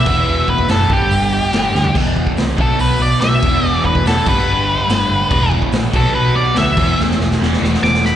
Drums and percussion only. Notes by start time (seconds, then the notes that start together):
0.06 kick, crash
0.48 kick
0.58 kick
0.68 snare, open hi-hat
0.90 kick
1.11 open hi-hat
1.53 snare, open hi-hat
1.75 snare
1.84 floor tom
1.95 kick, crash
2.16 kick
2.27 kick
2.37 snare, open hi-hat
2.58 kick
2.79 open hi-hat
3.21 snare, open hi-hat
3.43 kick, crash
3.85 kick
3.95 kick
4.06 snare, open hi-hat
4.26 kick, crash
4.89 snare, open hi-hat
5.31 kick, crash
5.52 kick
5.62 kick
5.72 snare, open hi-hat
5.94 kick, crash
6.56 snare, open hi-hat
6.77 kick, crash
7.00 snare
7.11 snare
7.20 snare
7.31 snare
7.43 snare
7.53 snare
7.64 snare
7.75 snare
7.84 snare
7.95 snare
8.05 snare